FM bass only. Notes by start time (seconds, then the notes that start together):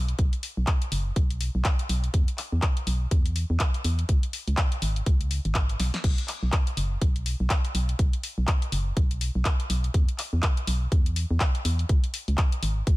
Already playing: B1
0.19 B1
0.57 B1
0.92 F#1
1.16 B1
1.55 B1
1.89 B1
2.14 E2
2.52 E2
2.87 B1
3.11 E2
3.50 E2
3.85 E2
4.09 C#2
4.48 C#2
4.82 G#1
5.06 C#2
5.45 G#1
5.80 B1
6.04 B1
6.43 B1
6.77 F#1
7.02 B1
7.40 B1
7.75 B1
7.99 B1
8.38 B1
8.72 F#1
8.97 B1
9.35 B1
9.70 B1
9.94 E2
10.33 E2
10.67 B1
10.92 E2
11.31 E2
11.65 E2
11.89 C#2
12.28 C#2
12.63 G#1
12.87 C#2